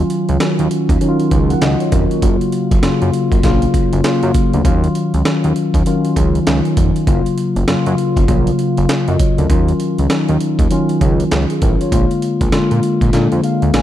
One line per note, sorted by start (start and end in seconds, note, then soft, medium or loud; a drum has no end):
0.00 0.37 D#3 medium
0.00 0.37 F#3 medium
0.00 0.37 C#4 medium
0.00 0.37 F4 medium
0.10 closed hi-hat medium
0.29 0.38 C#2 medium
0.29 closed hi-hat medium
0.40 0.97 D#3 medium
0.40 0.97 F#3 medium
0.40 0.98 C#4 medium
0.40 0.98 F#4 medium
0.40 snare loud
0.40 closed hi-hat medium
0.59 0.68 D#2 medium
0.59 closed hi-hat medium
0.71 closed hi-hat medium
0.89 0.98 D#2 medium
0.89 kick medium
0.89 closed hi-hat medium
1.01 1.58 D#3 medium
1.01 1.58 F#3 medium
1.01 1.32 C#4 medium
1.01 1.10 D#4 medium
1.01 closed hi-hat medium
1.09 1.35 F4 loud
1.20 closed hi-hat soft
1.31 1.55 C#2 medium
1.31 kick medium
1.31 closed hi-hat medium
1.50 1.62 A#4 soft
1.50 1.61 F#5 medium
1.50 closed hi-hat medium
1.62 1.76 C#2 medium
1.62 1.80 F#4 medium
1.62 1.80 D#5 medium
1.62 snare loud
1.62 closed hi-hat medium
1.80 1.92 F4 medium
1.80 1.91 C#5 medium
1.80 closed hi-hat soft
1.92 2.06 F1 medium
1.92 2.10 C#4 medium
1.92 2.10 A#4 medium
1.92 kick loud
1.92 closed hi-hat medium
2.11 2.22 A#3 soft
2.11 2.40 F#4 medium
2.11 closed hi-hat soft
2.22 2.37 F#1 loud
2.22 2.79 C#3 medium
2.22 2.79 F#3 medium
2.22 2.79 A#3 medium
2.22 2.80 F4 medium
2.22 kick loud
2.22 closed hi-hat medium
2.41 closed hi-hat soft
2.52 closed hi-hat medium
2.71 2.80 F#1 medium
2.71 kick medium
2.71 closed hi-hat medium
2.82 2.91 F#2 soft
2.82 3.40 C#3 medium
2.82 3.40 F#3 medium
2.82 3.40 A#3 medium
2.82 3.40 F4 loud
2.82 snare loud
2.82 closed hi-hat medium
3.02 3.11 F#2 loud
3.02 closed hi-hat soft
3.13 closed hi-hat medium
3.32 3.41 F#1 medium
3.32 kick medium
3.32 closed hi-hat soft
3.43 3.67 A#1 loud
3.43 4.00 C#3 medium
3.43 4.00 F#3 medium
3.43 4.01 A#3 medium
3.43 4.01 F4 loud
3.43 kick loud
3.43 snare medium
3.43 closed hi-hat medium
3.62 closed hi-hat medium
3.74 kick medium
3.74 closed hi-hat medium
3.93 4.02 F#1 loud
3.93 closed hi-hat soft
4.04 4.61 C#3 medium
4.04 4.61 F#3 medium
4.04 4.61 A#3 medium
4.04 4.62 F4 loud
4.04 snare loud
4.04 closed hi-hat medium
4.23 4.32 F#2 loud
4.23 closed hi-hat medium
4.34 kick loud
4.34 closed hi-hat medium
4.53 4.62 D2 medium
4.53 closed hi-hat medium
4.64 4.88 D#2 loud
4.64 5.21 D#3 medium
4.64 5.22 F#3 medium
4.64 5.22 C#4 medium
4.64 5.22 F4 medium
4.64 kick loud
4.64 closed hi-hat medium
4.84 closed hi-hat soft
4.95 closed hi-hat medium
5.14 5.23 C#2 medium
5.14 closed hi-hat medium
5.25 5.82 D#3 medium
5.25 5.82 F#3 medium
5.25 5.82 C#4 medium
5.25 5.83 F4 medium
5.25 snare loud
5.25 closed hi-hat medium
5.44 5.53 D#2 medium
5.44 closed hi-hat soft
5.56 closed hi-hat medium
5.74 5.83 D#2 medium
5.74 kick medium
5.74 closed hi-hat soft
5.86 6.43 D#3 medium
5.86 6.43 F#3 medium
5.86 6.43 C#4 medium
5.86 6.43 F4 loud
5.86 closed hi-hat medium
6.05 closed hi-hat medium
6.16 6.40 C#2 loud
6.16 kick medium
6.16 closed hi-hat medium
6.35 closed hi-hat soft
6.46 6.61 C#2 loud
6.46 7.03 D#3 medium
6.46 7.04 F#3 medium
6.46 7.04 C#4 medium
6.46 7.04 D#4 medium
6.46 snare loud
6.46 closed hi-hat medium
6.65 closed hi-hat soft
6.77 6.91 F1 medium
6.77 kick loud
6.77 closed hi-hat medium
6.96 closed hi-hat soft
7.07 7.22 F#1 loud
7.07 7.64 C#3 medium
7.07 7.64 F#3 medium
7.07 7.64 A#3 medium
7.07 7.65 F4 medium
7.07 kick loud
7.07 closed hi-hat medium
7.26 closed hi-hat soft
7.38 closed hi-hat medium
7.56 7.65 F#1 medium
7.56 closed hi-hat soft
7.67 7.75 F#2 soft
7.67 8.24 C#3 medium
7.67 8.25 F#3 medium
7.67 8.25 A#3 medium
7.67 8.25 F4 loud
7.67 snare loud
7.67 closed hi-hat medium
7.86 7.95 F#2 loud
7.86 closed hi-hat medium
7.98 closed hi-hat medium
8.16 8.26 F#1 medium
8.16 kick medium
8.16 closed hi-hat soft
8.28 8.52 A#1 loud
8.28 8.85 C#3 medium
8.28 8.85 F#3 medium
8.28 8.85 A#3 medium
8.28 8.86 F4 medium
8.28 kick medium
8.28 closed hi-hat medium
8.47 closed hi-hat medium
8.59 closed hi-hat medium
8.77 8.87 F#1 loud
8.77 closed hi-hat medium
8.89 snare loud
8.89 closed hi-hat medium
9.08 9.17 F#2 loud
9.08 9.19 F#4 medium
9.08 9.19 D#5 medium
9.08 closed hi-hat soft
9.19 9.38 F4 medium
9.19 9.37 C#5 medium
9.19 kick loud
9.19 closed hi-hat medium
9.38 9.47 D2 medium
9.38 9.49 C#4 soft
9.38 9.67 A#4 medium
9.38 closed hi-hat medium
9.49 9.73 D#2 loud
9.49 10.06 D#3 medium
9.49 10.07 F#3 medium
9.49 10.07 C#4 medium
9.49 10.07 F4 medium
9.49 kick loud
9.49 closed hi-hat medium
9.68 closed hi-hat soft
9.80 closed hi-hat medium
9.98 10.08 C#2 medium
9.98 closed hi-hat medium
10.10 10.67 D#3 medium
10.10 10.67 F#3 medium
10.10 10.67 C#4 medium
10.10 10.68 D#4 medium
10.10 snare loud
10.10 closed hi-hat medium
10.29 10.38 D#2 medium
10.29 closed hi-hat medium
10.40 closed hi-hat medium
10.59 10.68 D#2 medium
10.59 kick medium
10.59 closed hi-hat soft
10.71 11.28 D#3 loud
10.71 11.28 F#3 medium
10.71 11.28 C#4 medium
10.71 11.28 F4 loud
10.71 closed hi-hat medium
10.89 closed hi-hat medium
11.01 11.24 C#2 medium
11.01 kick medium
11.01 closed hi-hat medium
11.20 closed hi-hat medium
11.31 11.46 C#2 medium
11.31 snare loud
11.31 closed hi-hat medium
11.50 11.61 G#4 medium
11.50 closed hi-hat soft
11.62 11.76 A1 medium
11.62 11.80 C#4 medium
11.62 11.80 A#4 medium
11.62 kick loud
11.62 closed hi-hat medium
11.81 11.92 F4 medium
11.81 12.09 C#5 medium
11.81 closed hi-hat medium
11.92 12.06 A#1 loud
11.92 12.49 D3 medium
11.92 12.49 G#3 medium
11.92 12.49 A#3 medium
11.92 12.49 F4 medium
11.92 kick loud
11.92 closed hi-hat medium
12.11 closed hi-hat soft
12.22 closed hi-hat medium
12.41 12.50 A#1 medium
12.41 kick medium
12.41 closed hi-hat medium
12.52 12.60 A#2 soft
12.52 13.09 D3 medium
12.52 13.09 G#3 medium
12.52 13.10 A#3 medium
12.52 13.10 F4 loud
12.52 snare loud
12.52 closed hi-hat medium
12.71 12.80 A#2 loud
12.71 closed hi-hat soft
12.83 closed hi-hat medium
13.01 13.10 A#1 loud
13.01 kick medium
13.01 closed hi-hat soft
13.13 13.28 A#2 loud
13.13 13.70 D3 medium
13.13 13.70 G#3 medium
13.13 13.70 A#3 medium
13.13 13.71 D4 medium
13.13 snare medium
13.13 closed hi-hat medium
13.32 13.41 F2 medium
13.32 closed hi-hat medium
13.44 13.72 F5 medium
13.44 closed hi-hat medium
13.62 13.71 D2 medium
13.62 closed hi-hat medium
13.74 13.82 A#1 medium
13.74 13.82 G#4 medium
13.74 13.82 F5 medium
13.74 13.82 G#5 medium
13.74 snare loud
13.74 closed hi-hat medium